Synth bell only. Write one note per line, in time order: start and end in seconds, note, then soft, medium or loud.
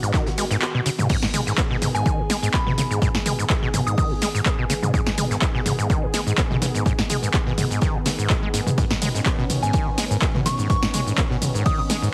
1.95 2.07 G#5 medium
2.54 2.68 B5 loud
3.87 3.94 D#6 medium
3.98 4.06 D#6 medium
9.63 9.75 G#5 medium
10.46 10.60 C#6 medium
10.70 10.84 C#6 medium
11.66 11.74 D#6 medium
11.79 11.86 D#6 medium